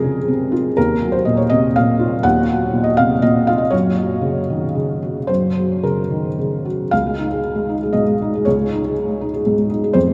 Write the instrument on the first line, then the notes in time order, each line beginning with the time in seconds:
felt piano
Already playing: F2 C3 G#3 G#4 A#4
0.04 C#3
0.28 C3
0.52 F4
0.77 D#2 A#4
1.02 F#3
1.12 C5
1.25 A#2 D#5
1.37 C#5
1.50 C3 D#5
1.76 A#2 F5
1.99 F4
2.23 D#2 F#5
2.51 F#3
2.73 A#2
2.84 D#5
2.97 C3 F5
3.22 A#2 D#5
3.47 F4 F5
3.58 D#5
3.71 F#2 C#5
3.97 F#3
4.21 C#3
4.50 D#3
4.75 C#3
5.02 F#4
5.27 F#2 C5
5.57 F#3
5.83 C#3 A#4
6.11 D#3
6.39 C#3
6.65 F#4
6.91 C#2 F5
7.07 G#3
7.18 D#4
7.31 G#4
7.55 G#3
7.69 D#4
7.83 G#4
7.93 G#2 D#5
8.07 G#3
8.22 D#4
8.35 G#4
8.45 C#2 C#5
8.61 G#3
8.73 D#4
8.85 G#4
9.09 G#3
9.21 D#4
9.34 G#4
9.47 G#2
9.58 G#3
9.70 D#4
9.84 G#4
9.93 F2 C5
10.07 G#3